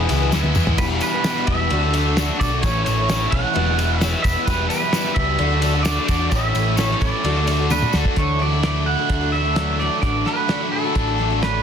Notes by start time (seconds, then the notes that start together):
Already playing: E2 B2 E3 G#3 B3 E4 G#4 B4 E5 G#5 E6
0.00 E3
0.09 C#2 E3 G#3 B3 E4, ride, tambourine
0.13 E3
0.20 E3 G#3 B3 E4
0.31 D2 E2 B2 E3 G#3 B3 E4 G#4 B4, snare, tambourine
0.43 E3 G#3 B3 E4, high tom
0.55 E2 E3 G#3 B3 E4, mid tom, tambourine
0.66 E3 G#3 B3 E4, floor tom
0.78 E1 E2 B2 E3 G3 B3 E4 G4 B4 G5, kick, ride, tambourine, crash
1.01 E3 G3 B3 E4 B4, ride, tambourine
1.13 E3 G3 B3 E4
1.24 E2 B2 E3 G3 B3 E4 G4 B4, snare, ride, tambourine
1.36 snare
1.47 E1 E3 G3 B3 E4 E5, kick, ride
1.70 D2 D3 A3 D4 F#4 A4 D5 F#5 D6, ride
1.83 A3 D4 F#4
1.94 D3 A3 D4 F#4, ride, tambourine
2.17 D3 A3 D4 F#4 A4 D5, snare, ride, tambourine
2.28 A3 D4 F#4
2.40 B1 A3 D4 F#4 D5, kick, ride, tambourine
2.51 A3 D4 F#4
2.62 A1 A2 E3 A3 C#4 E4 A4 C#5 E5 A5 E6, kick, ride, tambourine
2.85 A1 C#4 E4 C#5, ride, tambourine
2.90 A3
2.97 A3 C#4 E4
3.08 A2 E3 A3 C#4 E4 A4 C#5, snare, ride, tambourine
3.20 A3 C#4 E4
3.31 B1 E3 A3 C#4 E4 F#5, kick, ride
3.54 E1 E2 B2 E3 G#3 B3 E4 G#4 B4 G#5, ride
3.65 E3 G#3 B3 E4
3.77 E3 G#3 B3 E4, ride, tambourine
3.82 E3
3.99 E2 B2 E3 G#3 B3 E4 G#4 C#5 E5, snare, ride, tambourine
4.12 E3 G#3 B3 E4
4.22 E1 B3 E4 E5, kick, ride, tambourine
4.27 E3 G#3
4.36 E3 G#3 B3 E4
4.45 E1 E2 B2 E3 G3 B3 E4 G4 B4 E5 G5, kick, ride, tambourine
4.50 E4
4.69 G3 B3 E4 B4, ride, tambourine
4.73 E3
4.81 E3 G3 B3 E4
4.93 E2 B2 E3 G3 B3 E4 G4 B4, snare, ride, tambourine
5.04 E3 G3 B3 E4, snare
5.14 C#2 E3 G3 B3 E5, kick, ride
5.19 E4
5.38 D2 D3 A3 D4 F#4 A4 D5 F#5 D6, ride
5.50 A3 D4 F#4
5.62 D3 A3 D4 F#4, ride, tambourine
5.73 A3 D4 F#4
5.83 D3 A3 D4 F#4 A4 D5, snare, ride, tambourine
5.96 A3 D4 F#4
6.06 E2 D4 F#4 D5, kick, ride, tambourine
6.11 A3
6.19 A3 D4 F#4
6.30 A1 A2 E3 A3 C#4 E4 A4 C#5 E5 C#6, kick, ride, tambourine
6.55 A1 A3 C#4 E4, ride, tambourine
6.66 A3 C#4 E4
6.77 A2 E3 A3 C#4 E4 A4 C#5, snare, ride, tambourine
6.89 A3 C#4 E4, snare
7.00 A1 E3 A3 C#4 E4 D5, kick, ride, tambourine
7.23 D2 D3 A3 D4 F#4 A4 D5 F#5 D6, ride
7.36 A3 D4 F#4
7.46 D3 A3 D4 F#4, ride, tambourine
7.50 F#4
7.59 A3 D4 F#4
7.70 D3 A3 D4 F#4 A4 B4 D5, high tom, tambourine
7.82 A3 D4 F#4, mid tom
7.92 D2 A3 D4 F#4 A4, snare, tambourine
8.05 A3 D4 F#4, kick
8.16 D2 D3 E3 A3 D4 F#4 A4 C#5 E5 F#5 D6, kick, closed hi-hat
8.39 E3 A3 D4 E4 F#4 D5
8.53 A3 D4 F#4
8.63 D3 E3 A3 D4 F#4 D5, snare, closed hi-hat
8.74 A3 D4 F#4
8.86 E4 F#5
8.97 A3 D4 F#4
9.09 D2 D4, kick, closed hi-hat
9.21 A3 D4 F#4
9.32 E3 A3 D4 F#4 E5
9.44 A3 D4 F#4
9.55 D3 E3 F#3 A3 D4 F#4, snare, closed hi-hat
9.79 E3 A3 D4 F#4 D5
10.02 A1 D3 E3 A3 D4 F#4 D5, kick, closed hi-hat
10.25 E3 A3 D4 E4 F#4 B4, snare
10.36 A3 D4 F#4
10.48 D3 E3 A3 D4 F#4, snare, closed hi-hat
10.61 A3 D4 F#4
10.72 E4 A4
10.84 A3 D4 F#4
10.95 A1 D4, kick, closed hi-hat
11.07 A3 D4 F#4
11.18 E3 A3 D4 F#4
11.31 A3 D4 F#4
11.42 D3 E3 F#3 A3 D4 F#4 B4, snare, closed hi-hat